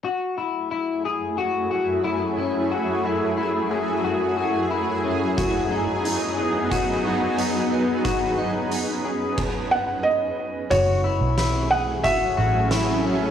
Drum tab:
CC |--------|--------|--------|----x---|
HH |--------|--------|x-x-x-x-|x-x-----|
SD |--------|--------|--------|--------|
BD |--------|--------|o---o---|o---o---|

CC |--------|
HH |x-x-x-x-|
SD |--o---o-|
BD |o---o---|